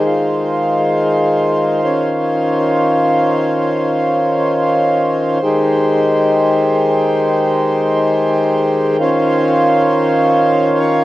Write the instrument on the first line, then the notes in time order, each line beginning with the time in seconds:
harmonium
Already playing: D#3 G#3 C5
0.05 F4
1.85 C#4
5.43 D#3 G#3 G4
9.01 C#4 F4 C5
10.80 C#5